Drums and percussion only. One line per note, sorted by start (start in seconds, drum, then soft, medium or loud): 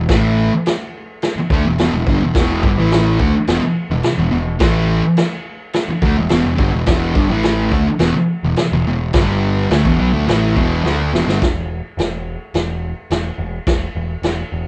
0.09 kick loud
0.09 snare loud
0.09 crash medium
0.66 snare loud
0.66 crash medium
1.22 snare loud
1.22 crash medium
1.50 kick loud
1.79 snare loud
1.79 crash medium
2.07 kick loud
2.35 kick loud
2.35 snare loud
2.35 crash medium
2.63 kick loud
2.91 snare loud
2.91 crash medium
3.19 kick loud
3.47 snare loud
3.47 crash medium
4.03 snare loud
4.03 crash medium
4.60 kick loud
4.60 snare loud
4.60 crash medium
5.17 snare loud
5.17 crash medium
5.73 snare loud
5.73 crash medium
6.02 kick loud
6.29 snare loud
6.29 crash medium
6.58 kick loud
6.86 kick loud
6.86 snare loud
6.86 crash medium
7.15 kick loud
7.43 snare loud
7.43 crash medium
7.72 kick medium
7.99 snare loud
7.99 crash medium
8.56 snare loud
8.56 crash medium
9.13 kick loud
9.13 snare loud
9.13 crash medium
9.71 snare loud
9.71 crash medium
9.85 kick loud
10.28 snare loud
10.28 crash medium
10.57 kick loud
10.86 snare medium
11.15 snare medium
11.29 snare medium
11.42 kick loud
11.42 snare loud
11.42 crash medium
11.99 snare loud
11.99 crash medium
12.54 snare loud
12.54 crash soft
13.11 snare loud
13.11 crash medium
13.67 kick loud
13.67 snare loud
13.67 crash medium
14.23 snare loud
14.23 crash medium